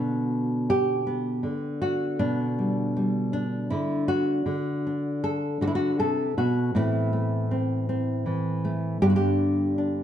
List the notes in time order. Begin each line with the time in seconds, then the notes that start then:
Already playing: B2 D3 B3 F#4
0.70 G4
1.07 B3
1.43 D3
1.82 F#4
2.19 B2 D4
2.59 G3
2.97 G3
3.33 D4
3.70 D3 E4
4.08 F#4
4.46 D3
4.87 D4
5.24 A4
5.61 D3 F#4
5.67 E4
5.75 F#4
5.99 C3 A4
6.37 B2 F#4
6.75 A2 E3 A3 C4 E4
7.13 A3
7.51 C4
7.89 C4
8.26 E3
8.65 A3
9.02 G2 D3 B3 D4 G4
9.10 F#4
9.16 G4
9.78 D4